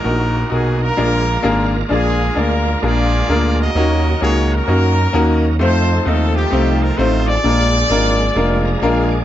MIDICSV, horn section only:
0, 0, Header, 1, 2, 480
1, 0, Start_track
1, 0, Key_signature, -6, "minor"
1, 0, Tempo, 461538
1, 54, Time_signature, 4, 2, 24, 8
1, 9614, End_track
2, 0, Start_track
2, 0, Title_t, "Horn section"
2, 0, Program_c, 0, 61
2, 0, Note_on_c, 0, 63, 84
2, 0, Note_on_c, 0, 66, 82
2, 0, Note_on_c, 0, 70, 109
2, 528, Note_on_c, 0, 68, 86
2, 538, Note_off_c, 0, 70, 0
2, 797, Note_off_c, 0, 63, 0
2, 798, Note_off_c, 0, 66, 0
2, 809, Note_off_c, 0, 68, 0
2, 833, Note_on_c, 0, 70, 97
2, 835, Note_on_c, 0, 62, 63
2, 835, Note_on_c, 0, 65, 69
2, 1755, Note_off_c, 0, 62, 0
2, 1755, Note_off_c, 0, 65, 0
2, 1796, Note_off_c, 0, 70, 0
2, 1983, Note_on_c, 0, 68, 93
2, 1987, Note_on_c, 0, 65, 71
2, 1989, Note_on_c, 0, 62, 63
2, 2428, Note_off_c, 0, 68, 0
2, 2453, Note_off_c, 0, 65, 0
2, 2456, Note_off_c, 0, 62, 0
2, 2460, Note_on_c, 0, 70, 93
2, 2466, Note_on_c, 0, 65, 65
2, 2468, Note_on_c, 0, 62, 71
2, 2933, Note_off_c, 0, 65, 0
2, 2941, Note_off_c, 0, 70, 0
2, 2942, Note_on_c, 0, 74, 117
2, 2945, Note_on_c, 0, 65, 84
2, 2946, Note_on_c, 0, 68, 87
2, 3384, Note_off_c, 0, 62, 0
2, 3721, Note_off_c, 0, 74, 0
2, 3733, Note_on_c, 0, 75, 120
2, 3734, Note_on_c, 0, 66, 90
2, 3737, Note_on_c, 0, 70, 84
2, 3863, Note_off_c, 0, 65, 0
2, 3863, Note_off_c, 0, 68, 0
2, 4348, Note_off_c, 0, 75, 0
2, 4386, Note_on_c, 0, 73, 102
2, 4647, Note_off_c, 0, 66, 0
2, 4648, Note_off_c, 0, 70, 0
2, 4662, Note_off_c, 0, 73, 0
2, 4698, Note_on_c, 0, 70, 104
2, 4702, Note_on_c, 0, 61, 72
2, 4703, Note_on_c, 0, 66, 69
2, 5611, Note_off_c, 0, 61, 0
2, 5611, Note_off_c, 0, 66, 0
2, 5650, Note_off_c, 0, 70, 0
2, 5835, Note_on_c, 0, 63, 85
2, 5835, Note_on_c, 0, 72, 102
2, 5838, Note_on_c, 0, 69, 79
2, 6277, Note_off_c, 0, 72, 0
2, 6298, Note_off_c, 0, 69, 0
2, 6310, Note_on_c, 0, 69, 89
2, 6595, Note_off_c, 0, 63, 0
2, 6602, Note_on_c, 0, 67, 95
2, 6603, Note_on_c, 0, 60, 77
2, 6605, Note_off_c, 0, 69, 0
2, 6608, Note_on_c, 0, 63, 73
2, 7048, Note_off_c, 0, 67, 0
2, 7078, Note_on_c, 0, 70, 95
2, 7258, Note_on_c, 0, 72, 99
2, 7262, Note_off_c, 0, 70, 0
2, 7519, Note_off_c, 0, 60, 0
2, 7522, Note_off_c, 0, 63, 0
2, 7555, Note_on_c, 0, 74, 121
2, 7557, Note_on_c, 0, 65, 79
2, 7558, Note_off_c, 0, 72, 0
2, 7560, Note_on_c, 0, 68, 83
2, 9181, Note_off_c, 0, 68, 0
2, 9182, Note_off_c, 0, 65, 0
2, 9193, Note_on_c, 0, 68, 88
2, 9194, Note_on_c, 0, 62, 60
2, 9194, Note_on_c, 0, 65, 70
2, 9472, Note_off_c, 0, 74, 0
2, 9614, Note_off_c, 0, 62, 0
2, 9614, Note_off_c, 0, 65, 0
2, 9614, Note_off_c, 0, 68, 0
2, 9614, End_track
0, 0, End_of_file